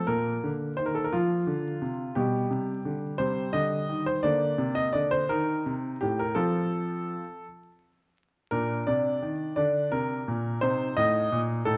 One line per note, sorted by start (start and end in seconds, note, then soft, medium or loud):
0.07 0.36 A#2 soft
0.07 2.13 A#3 soft
0.07 0.49 A#4 medium
0.43 0.72 D3 soft
0.77 1.07 D#3 soft
0.77 0.86 C5 medium
0.86 0.95 A#4 medium
0.95 1.04 A4 medium
1.04 1.13 A#4 medium
1.13 1.41 F3 soft
1.13 2.17 F4 medium
1.47 1.75 D3 soft
1.82 2.10 C3 soft
2.15 2.44 B2 medium
2.15 3.16 G3 soft
2.15 3.15 G4 medium
2.50 2.78 C3 soft
2.85 3.13 D3 soft
3.18 3.47 C3 soft
3.18 4.19 G3 soft
3.18 3.54 C5 medium
3.53 3.82 D3 soft
3.53 4.02 D#5 medium
3.89 4.17 D#3 soft
4.06 4.24 C5 medium
4.23 4.52 D3 medium
4.23 5.26 A#3 soft
4.23 4.76 D5 medium
4.58 4.87 C3 medium
4.75 4.94 D#5 medium
4.93 5.23 D3 soft
4.93 5.11 D5 medium
5.11 5.30 C5 medium
5.29 5.59 D#3 soft
5.29 6.34 D#4 soft
5.29 5.73 A#4 medium
5.66 5.95 C3 medium
6.01 6.31 A2 soft
6.01 6.19 G4 medium
6.19 6.37 A#4 medium
6.35 7.12 F3 soft
6.35 7.22 C4 soft
6.35 7.22 F4 soft
6.35 7.44 A4 medium
8.51 8.81 A#2 soft
8.51 9.55 D4 soft
8.51 8.88 A#4 medium
8.87 9.16 C3 soft
8.87 9.54 D5 medium
9.22 9.51 D#3 soft
9.56 9.86 D3 soft
9.56 10.59 D4 soft
9.56 9.89 D5 medium
9.92 10.21 C3 medium
9.92 10.59 A#4 medium
10.28 10.56 A#2 medium
10.61 10.91 C3 medium
10.61 11.63 D#4 soft
10.61 10.94 C5 medium
10.97 11.25 A2 medium
10.97 11.38 D#5 loud
11.32 11.60 A#2 medium
11.65 11.77 A2 medium
11.65 11.77 D#4 soft
11.65 11.77 A4 medium